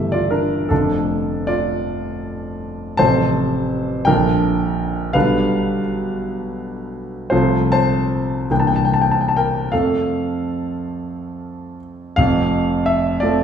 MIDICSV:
0, 0, Header, 1, 2, 480
1, 0, Start_track
1, 0, Key_signature, -1, "major"
1, 0, Tempo, 759494
1, 444, Time_signature, 6, 3, 24, 8
1, 1893, Tempo, 722022
1, 2853, Tempo, 699301
1, 4293, Tempo, 784314
1, 5733, Tempo, 821918
1, 7653, Tempo, 703400
1, 8512, End_track
2, 0, Start_track
2, 0, Title_t, "Grand piano"
2, 0, Program_c, 0, 0
2, 0, Control_c, 0, 64, 127
2, 0, Note_on_c, 0, 31, 42
2, 0, Note_on_c, 0, 49, 32
2, 0, Note_on_c, 0, 52, 34
2, 0, Note_on_c, 0, 57, 35
2, 0, Note_on_c, 0, 67, 38
2, 0, Note_on_c, 0, 76, 54
2, 75, Note_on_c, 0, 74, 61
2, 82, Note_off_c, 0, 76, 0
2, 86, Note_on_c, 0, 65, 43
2, 193, Note_on_c, 0, 70, 60
2, 195, Note_off_c, 0, 65, 0
2, 198, Note_off_c, 0, 74, 0
2, 198, Note_on_c, 0, 62, 43
2, 420, Note_off_c, 0, 31, 0
2, 421, Note_off_c, 0, 49, 0
2, 422, Note_off_c, 0, 52, 0
2, 422, Note_off_c, 0, 57, 0
2, 424, Note_off_c, 0, 62, 0
2, 434, Note_on_c, 0, 69, 56
2, 438, Note_off_c, 0, 70, 0
2, 445, Note_on_c, 0, 62, 43
2, 446, Note_on_c, 0, 50, 34
2, 447, Note_on_c, 0, 29, 42
2, 450, Note_on_c, 0, 53, 36
2, 452, Note_on_c, 0, 57, 35
2, 455, Control_c, 0, 64, 0
2, 460, Note_off_c, 0, 67, 0
2, 551, Control_c, 0, 64, 127
2, 917, Note_off_c, 0, 62, 0
2, 929, Note_on_c, 0, 74, 72
2, 936, Note_on_c, 0, 65, 50
2, 937, Note_off_c, 0, 69, 0
2, 1865, Note_off_c, 0, 65, 0
2, 1868, Note_off_c, 0, 50, 0
2, 1869, Note_off_c, 0, 29, 0
2, 1870, Note_off_c, 0, 53, 0
2, 1871, Note_off_c, 0, 57, 0
2, 1880, Note_on_c, 0, 81, 80
2, 1886, Note_off_c, 0, 74, 0
2, 1889, Note_on_c, 0, 72, 62
2, 1890, Note_on_c, 0, 33, 48
2, 1892, Note_on_c, 0, 57, 40
2, 1893, Note_on_c, 0, 48, 41
2, 1894, Note_on_c, 0, 53, 39
2, 1906, Control_c, 0, 64, 0
2, 2022, Control_c, 0, 64, 127
2, 2585, Note_off_c, 0, 72, 0
2, 2590, Note_off_c, 0, 33, 0
2, 2591, Note_off_c, 0, 57, 0
2, 2592, Note_off_c, 0, 48, 0
2, 2593, Note_off_c, 0, 53, 0
2, 2593, Note_on_c, 0, 79, 82
2, 2604, Note_on_c, 0, 70, 58
2, 2607, Note_off_c, 0, 81, 0
2, 2608, Note_on_c, 0, 34, 47
2, 2608, Note_on_c, 0, 53, 41
2, 2610, Note_on_c, 0, 62, 42
2, 2612, Note_on_c, 0, 50, 39
2, 2625, Control_c, 0, 64, 0
2, 2729, Control_c, 0, 64, 127
2, 3306, Note_off_c, 0, 70, 0
2, 3313, Note_off_c, 0, 34, 0
2, 3313, Note_off_c, 0, 53, 0
2, 3314, Note_off_c, 0, 62, 0
2, 3315, Note_off_c, 0, 50, 0
2, 3328, Note_off_c, 0, 79, 0
2, 3330, Note_on_c, 0, 77, 73
2, 3334, Note_on_c, 0, 71, 55
2, 3340, Note_on_c, 0, 50, 39
2, 3340, Note_on_c, 0, 55, 41
2, 3341, Note_on_c, 0, 35, 48
2, 3342, Note_on_c, 0, 62, 41
2, 3351, Control_c, 0, 64, 0
2, 3474, Control_c, 0, 64, 127
2, 3785, Note_off_c, 0, 71, 0
2, 3810, Note_off_c, 0, 77, 0
2, 4746, Note_off_c, 0, 50, 0
2, 4746, Note_off_c, 0, 55, 0
2, 4747, Note_off_c, 0, 35, 0
2, 4747, Note_off_c, 0, 62, 0
2, 4759, Note_on_c, 0, 72, 64
2, 4768, Note_on_c, 0, 65, 48
2, 4769, Note_on_c, 0, 53, 38
2, 4771, Note_on_c, 0, 36, 50
2, 4771, Note_on_c, 0, 57, 38
2, 4773, Note_on_c, 0, 60, 41
2, 4780, Control_c, 0, 64, 0
2, 4904, Control_c, 0, 64, 127
2, 5002, Note_off_c, 0, 65, 0
2, 5012, Note_off_c, 0, 72, 0
2, 5016, Note_on_c, 0, 81, 76
2, 5021, Note_on_c, 0, 72, 58
2, 5471, Note_off_c, 0, 72, 0
2, 5473, Note_off_c, 0, 53, 0
2, 5474, Note_off_c, 0, 36, 0
2, 5474, Note_off_c, 0, 57, 0
2, 5475, Note_off_c, 0, 60, 0
2, 5493, Note_off_c, 0, 81, 0
2, 5497, Note_on_c, 0, 36, 41
2, 5499, Note_on_c, 0, 58, 33
2, 5500, Note_on_c, 0, 52, 34
2, 5501, Note_on_c, 0, 62, 35
2, 5504, Note_on_c, 0, 79, 57
2, 5508, Control_c, 0, 64, 0
2, 5551, Note_off_c, 0, 79, 0
2, 5553, Note_on_c, 0, 81, 53
2, 5599, Note_on_c, 0, 79, 58
2, 5601, Note_off_c, 0, 81, 0
2, 5613, Control_c, 0, 64, 127
2, 5650, Note_off_c, 0, 79, 0
2, 5653, Note_on_c, 0, 81, 59
2, 5703, Note_off_c, 0, 81, 0
2, 5707, Note_on_c, 0, 79, 55
2, 5756, Note_off_c, 0, 79, 0
2, 5760, Note_on_c, 0, 81, 59
2, 5806, Note_on_c, 0, 79, 58
2, 5807, Note_off_c, 0, 81, 0
2, 5856, Note_off_c, 0, 79, 0
2, 5864, Note_on_c, 0, 81, 56
2, 5911, Note_off_c, 0, 81, 0
2, 5919, Note_on_c, 0, 79, 50
2, 5963, Note_on_c, 0, 81, 51
2, 5964, Note_off_c, 0, 79, 0
2, 6010, Note_on_c, 0, 79, 64
2, 6013, Note_off_c, 0, 81, 0
2, 6015, Note_on_c, 0, 70, 47
2, 6194, Note_off_c, 0, 36, 0
2, 6194, Note_off_c, 0, 58, 0
2, 6195, Note_off_c, 0, 52, 0
2, 6195, Note_off_c, 0, 62, 0
2, 6202, Note_off_c, 0, 70, 0
2, 6214, Note_off_c, 0, 79, 0
2, 6216, Note_on_c, 0, 77, 59
2, 6221, Note_on_c, 0, 69, 45
2, 6224, Control_c, 0, 64, 0
2, 6224, Note_on_c, 0, 53, 32
2, 6225, Note_on_c, 0, 41, 39
2, 6227, Note_on_c, 0, 57, 35
2, 6231, Note_on_c, 0, 60, 33
2, 6334, Control_c, 0, 64, 127
2, 7409, Note_off_c, 0, 69, 0
2, 7430, Note_off_c, 0, 77, 0
2, 7635, Note_off_c, 0, 41, 0
2, 7635, Note_off_c, 0, 53, 0
2, 7637, Note_off_c, 0, 57, 0
2, 7638, Note_off_c, 0, 60, 0
2, 7644, Note_on_c, 0, 77, 82
2, 7652, Note_on_c, 0, 29, 53
2, 7658, Note_on_c, 0, 41, 61
2, 7666, Control_c, 0, 64, 0
2, 7793, Control_c, 0, 64, 127
2, 8117, Note_on_c, 0, 76, 72
2, 8130, Note_off_c, 0, 77, 0
2, 8351, Note_on_c, 0, 74, 73
2, 8352, Note_off_c, 0, 29, 0
2, 8355, Note_off_c, 0, 41, 0
2, 8366, Note_off_c, 0, 76, 0
2, 8369, Note_on_c, 0, 53, 43
2, 8373, Note_on_c, 0, 57, 41
2, 8377, Note_on_c, 0, 60, 47
2, 8512, Note_off_c, 0, 53, 0
2, 8512, Note_off_c, 0, 57, 0
2, 8512, Note_off_c, 0, 60, 0
2, 8512, Note_off_c, 0, 74, 0
2, 8512, End_track
0, 0, End_of_file